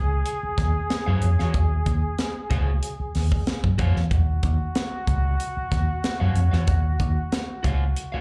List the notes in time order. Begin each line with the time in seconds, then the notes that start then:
Already playing: C#2 G#4
0.26 closed hi-hat
0.43 muted fingered electric bass stroke
0.58 D#2, kick, snare, closed hi-hat
0.90 snare, closed hi-hat
1.06 F#2 F#4 C#5 F5
1.22 F2, closed hi-hat
1.39 E2 F#4 C#5 F5, snare
1.54 D#2, kick, closed hi-hat
1.86 D#2, kick, closed hi-hat
2.19 snare, closed hi-hat
2.50 C#2 F#4 C#5 F5, kick, closed hi-hat
2.83 closed hi-hat
3.00 muted fingered electric bass stroke
3.15 D#2, snare, open hi-hat
3.32 kick
3.47 snare, closed hi-hat
3.64 F#2, kick
3.78 F2 F#4 C#5 F5, kick, closed hi-hat
3.96 E2, snare
4.11 D#2 F#4, kick, closed hi-hat
4.43 D#2, kick, closed hi-hat
4.75 snare, closed hi-hat
5.07 C#2, kick, closed hi-hat
5.40 closed hi-hat
5.57 muted fingered electric bass stroke
5.72 D#2, kick, snare, closed hi-hat
6.04 snare, closed hi-hat
6.20 F#2 F#4 C#5 F5
6.36 F2, closed hi-hat
6.52 E2 F#4 C#5 F5, snare
6.67 D#2, kick, closed hi-hat
7.00 D#2, kick, closed hi-hat
7.32 snare, closed hi-hat
7.63 C#2 F#4 C#5 F5, kick, closed hi-hat
7.96 closed hi-hat
8.12 F#4 C#5 F5, muted fingered electric bass stroke